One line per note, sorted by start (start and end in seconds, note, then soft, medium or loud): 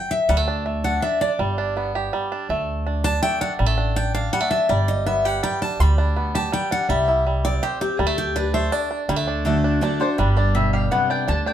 0.00 0.10 G5 loud
0.11 0.29 E5 loud
0.29 0.98 D2 loud
0.29 0.37 G3 medium
0.29 0.40 F#5 loud
0.37 0.65 A3 medium
0.48 0.85 D4 medium
0.66 1.17 A3 medium
0.84 1.03 D4 medium
0.84 1.02 F#5 medium
1.02 1.21 D4 medium
1.02 1.21 E5 medium
1.21 1.58 D4 medium
1.21 1.39 D5 medium
1.39 2.08 G1 medium
1.39 1.91 G3 medium
1.58 2.31 D4 medium
1.77 2.28 B3 medium
1.95 2.46 G4 medium
2.13 2.50 G3 medium
2.32 2.87 D4 medium
2.49 3.18 D2 medium
2.49 3.01 A3 medium
2.87 3.05 D4 medium
3.04 3.41 D4 medium
3.04 3.22 A5 loud
3.23 3.59 A3 medium
3.23 3.41 G5 loud
3.41 3.77 D4 medium
3.41 3.52 F#5 loud
3.59 4.29 A1 medium
3.59 3.66 G3 medium
3.66 3.96 A3 medium
3.78 3.96 D4 medium
3.96 4.15 D4 medium
3.96 4.14 G5 loud
4.14 4.51 D4 medium
4.14 4.32 F5 medium
4.33 4.40 G3 medium
4.33 4.50 F#5 loud
4.40 4.69 A3 medium
4.51 5.62 D4 medium
4.51 4.68 E5 loud
4.69 5.38 G1 loud
4.69 5.43 G3 medium
4.69 4.87 D5 medium
4.88 5.06 D#5 medium
5.06 5.58 B3 medium
5.06 5.25 E5 medium
5.25 6.34 G4 medium
5.25 5.42 F#5 medium
5.43 5.80 G3 medium
5.43 5.61 G5 loud
5.62 5.97 D4 medium
5.62 5.80 A5 medium
5.80 6.48 D2 medium
5.80 6.31 G3 medium
5.80 6.35 B5 loud
5.98 6.49 D4 medium
6.16 6.67 B3 medium
6.35 6.86 G4 medium
6.35 6.52 A5 loud
6.52 6.88 G3 medium
6.52 6.71 G5 loud
6.71 6.89 D4 medium
6.71 6.89 F#5 loud
6.89 7.58 C2 loud
6.89 7.25 G3 medium
6.89 7.41 E5 medium
7.08 7.59 E4 medium
7.27 7.77 G3 medium
7.45 7.80 C4 medium
7.45 7.62 D5 loud
7.63 7.99 G4 medium
7.63 7.80 C5 medium
7.81 7.99 C4 medium
7.81 8.00 G4 medium
7.99 8.68 D2 loud
7.99 8.06 G3 medium
7.99 8.17 A4 loud
8.06 8.36 A3 medium
8.18 8.35 G4 medium
8.36 8.71 D4 medium
8.36 8.53 B4 medium
8.54 9.05 A3 medium
8.54 8.72 C5 loud
8.72 8.90 D4 medium
8.72 9.00 D5 medium
8.91 9.09 D4 medium
9.09 9.78 D2 medium
9.09 9.44 D3 medium
9.09 9.16 G3 medium
9.16 9.45 A3 medium
9.27 9.64 D4 medium
9.45 9.80 D3 medium
9.45 9.80 A3 medium
9.45 9.97 A3 medium
9.45 9.80 D4 loud
9.45 9.81 F#4 medium
9.64 9.83 D4 medium
9.81 9.99 D3 medium
9.81 9.99 A3 medium
9.81 10.00 D4 medium
9.81 10.01 D4 medium
9.81 9.99 F#4 medium
9.81 10.00 D5 medium
10.00 10.37 D4 medium
10.00 10.18 D4 soft
10.00 10.17 F#4 medium
10.00 10.18 C5 medium
10.18 10.88 G1 medium
10.18 10.88 G2 medium
10.18 10.54 G3 medium
10.18 10.36 B4 medium
10.37 11.10 D4 medium
10.37 10.54 D5 medium
10.55 10.90 B2 medium
10.55 11.07 G3 medium
10.55 10.73 E5 medium
10.73 11.25 G4 medium
10.73 10.91 F5 loud
10.91 11.27 C3 medium
10.91 11.27 B3 medium
10.91 11.09 F#5 loud
11.10 11.28 D4 medium
11.10 11.28 G5 loud
11.28 11.53 D2 loud
11.28 11.53 D3 medium
11.28 11.46 D4 medium
11.28 11.47 A5 loud
11.46 11.53 D4 medium
11.46 11.53 G5 loud